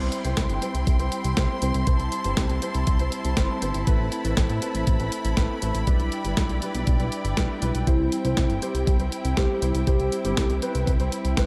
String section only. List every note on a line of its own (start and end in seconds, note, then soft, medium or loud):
0.00 5.83 C4 medium
0.00 7.83 E4 medium
0.00 1.85 G5 medium
0.00 3.83 C6 medium
1.87 5.83 A5 medium
3.87 7.83 B5 medium
5.87 7.85 D5 medium
5.87 11.46 G5 medium
7.87 11.46 C4 medium
7.87 11.46 E4 medium